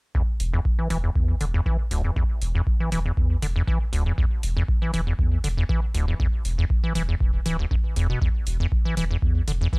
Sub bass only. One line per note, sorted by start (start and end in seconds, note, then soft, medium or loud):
0.40 0.58 E1 loud
0.90 1.08 E1 medium
1.16 1.33 E2 medium
1.41 1.58 E1 medium
1.91 2.09 D1 medium
2.42 2.59 E1 loud
2.92 3.10 E1 medium
3.17 3.35 E2 medium
3.42 3.60 E1 medium
3.93 4.11 D1 medium
4.43 4.61 E1 loud
4.94 5.11 E1 medium
5.19 5.37 E2 medium
5.44 5.62 E1 medium
5.95 6.12 D1 medium
6.45 6.63 E1 loud
6.95 7.13 E1 medium
7.21 7.38 E1 medium
7.46 7.64 D1 medium
7.96 8.14 E1 loud
8.47 8.64 E1 loud
8.97 9.15 E1 medium
9.22 9.40 E2 medium
9.48 9.65 E1 medium